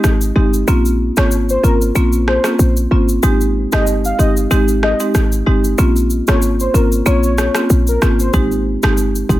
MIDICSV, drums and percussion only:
0, 0, Header, 1, 2, 480
1, 0, Start_track
1, 0, Tempo, 638298
1, 510, Time_signature, 4, 2, 24, 8
1, 7066, End_track
2, 0, Start_track
2, 0, Title_t, "Drums"
2, 29, Note_on_c, 9, 37, 90
2, 29, Note_on_c, 9, 82, 75
2, 104, Note_off_c, 9, 37, 0
2, 104, Note_off_c, 9, 82, 0
2, 160, Note_on_c, 9, 82, 57
2, 235, Note_off_c, 9, 82, 0
2, 403, Note_on_c, 9, 82, 53
2, 478, Note_off_c, 9, 82, 0
2, 509, Note_on_c, 9, 82, 75
2, 584, Note_off_c, 9, 82, 0
2, 642, Note_on_c, 9, 82, 42
2, 718, Note_off_c, 9, 82, 0
2, 878, Note_on_c, 9, 82, 51
2, 886, Note_on_c, 9, 37, 119
2, 953, Note_off_c, 9, 82, 0
2, 962, Note_off_c, 9, 37, 0
2, 988, Note_on_c, 9, 82, 71
2, 1063, Note_off_c, 9, 82, 0
2, 1123, Note_on_c, 9, 82, 53
2, 1198, Note_off_c, 9, 82, 0
2, 1233, Note_on_c, 9, 82, 46
2, 1309, Note_off_c, 9, 82, 0
2, 1365, Note_on_c, 9, 82, 51
2, 1440, Note_off_c, 9, 82, 0
2, 1471, Note_on_c, 9, 82, 71
2, 1546, Note_off_c, 9, 82, 0
2, 1599, Note_on_c, 9, 82, 55
2, 1674, Note_off_c, 9, 82, 0
2, 1712, Note_on_c, 9, 37, 90
2, 1788, Note_off_c, 9, 37, 0
2, 1834, Note_on_c, 9, 37, 98
2, 1837, Note_on_c, 9, 82, 54
2, 1909, Note_off_c, 9, 37, 0
2, 1912, Note_off_c, 9, 82, 0
2, 1950, Note_on_c, 9, 82, 74
2, 2025, Note_off_c, 9, 82, 0
2, 2080, Note_on_c, 9, 82, 56
2, 2155, Note_off_c, 9, 82, 0
2, 2322, Note_on_c, 9, 82, 52
2, 2397, Note_off_c, 9, 82, 0
2, 2429, Note_on_c, 9, 82, 75
2, 2504, Note_off_c, 9, 82, 0
2, 2563, Note_on_c, 9, 82, 43
2, 2639, Note_off_c, 9, 82, 0
2, 2797, Note_on_c, 9, 82, 52
2, 2806, Note_on_c, 9, 37, 114
2, 2872, Note_off_c, 9, 82, 0
2, 2881, Note_off_c, 9, 37, 0
2, 2909, Note_on_c, 9, 82, 68
2, 2984, Note_off_c, 9, 82, 0
2, 3043, Note_on_c, 9, 82, 55
2, 3119, Note_off_c, 9, 82, 0
2, 3154, Note_on_c, 9, 82, 47
2, 3230, Note_off_c, 9, 82, 0
2, 3285, Note_on_c, 9, 82, 53
2, 3360, Note_off_c, 9, 82, 0
2, 3391, Note_on_c, 9, 82, 68
2, 3466, Note_off_c, 9, 82, 0
2, 3521, Note_on_c, 9, 82, 53
2, 3596, Note_off_c, 9, 82, 0
2, 3632, Note_on_c, 9, 37, 90
2, 3707, Note_off_c, 9, 37, 0
2, 3758, Note_on_c, 9, 82, 55
2, 3833, Note_off_c, 9, 82, 0
2, 3871, Note_on_c, 9, 37, 92
2, 3871, Note_on_c, 9, 82, 73
2, 3946, Note_off_c, 9, 37, 0
2, 3946, Note_off_c, 9, 82, 0
2, 4002, Note_on_c, 9, 82, 53
2, 4077, Note_off_c, 9, 82, 0
2, 4243, Note_on_c, 9, 82, 52
2, 4318, Note_off_c, 9, 82, 0
2, 4349, Note_on_c, 9, 82, 76
2, 4424, Note_off_c, 9, 82, 0
2, 4483, Note_on_c, 9, 82, 41
2, 4558, Note_off_c, 9, 82, 0
2, 4589, Note_on_c, 9, 82, 53
2, 4664, Note_off_c, 9, 82, 0
2, 4718, Note_on_c, 9, 82, 49
2, 4726, Note_on_c, 9, 37, 117
2, 4793, Note_off_c, 9, 82, 0
2, 4802, Note_off_c, 9, 37, 0
2, 4828, Note_on_c, 9, 82, 66
2, 4903, Note_off_c, 9, 82, 0
2, 4963, Note_on_c, 9, 82, 53
2, 5038, Note_off_c, 9, 82, 0
2, 5074, Note_on_c, 9, 82, 47
2, 5149, Note_off_c, 9, 82, 0
2, 5205, Note_on_c, 9, 82, 53
2, 5280, Note_off_c, 9, 82, 0
2, 5311, Note_on_c, 9, 82, 71
2, 5386, Note_off_c, 9, 82, 0
2, 5440, Note_on_c, 9, 82, 53
2, 5515, Note_off_c, 9, 82, 0
2, 5550, Note_on_c, 9, 82, 52
2, 5552, Note_on_c, 9, 37, 94
2, 5626, Note_off_c, 9, 82, 0
2, 5627, Note_off_c, 9, 37, 0
2, 5674, Note_on_c, 9, 37, 98
2, 5677, Note_on_c, 9, 82, 52
2, 5749, Note_off_c, 9, 37, 0
2, 5752, Note_off_c, 9, 82, 0
2, 5790, Note_on_c, 9, 82, 78
2, 5865, Note_off_c, 9, 82, 0
2, 5920, Note_on_c, 9, 82, 55
2, 5995, Note_off_c, 9, 82, 0
2, 6031, Note_on_c, 9, 37, 94
2, 6031, Note_on_c, 9, 82, 44
2, 6106, Note_off_c, 9, 37, 0
2, 6106, Note_off_c, 9, 82, 0
2, 6163, Note_on_c, 9, 82, 52
2, 6238, Note_off_c, 9, 82, 0
2, 6269, Note_on_c, 9, 36, 124
2, 6269, Note_on_c, 9, 82, 73
2, 6344, Note_off_c, 9, 82, 0
2, 6345, Note_off_c, 9, 36, 0
2, 6404, Note_on_c, 9, 82, 42
2, 6479, Note_off_c, 9, 82, 0
2, 6638, Note_on_c, 9, 82, 51
2, 6646, Note_on_c, 9, 37, 114
2, 6713, Note_off_c, 9, 82, 0
2, 6722, Note_off_c, 9, 37, 0
2, 6748, Note_on_c, 9, 82, 70
2, 6823, Note_off_c, 9, 82, 0
2, 6883, Note_on_c, 9, 82, 52
2, 6958, Note_off_c, 9, 82, 0
2, 6989, Note_on_c, 9, 36, 91
2, 6993, Note_on_c, 9, 82, 47
2, 7064, Note_off_c, 9, 36, 0
2, 7066, Note_off_c, 9, 82, 0
2, 7066, End_track
0, 0, End_of_file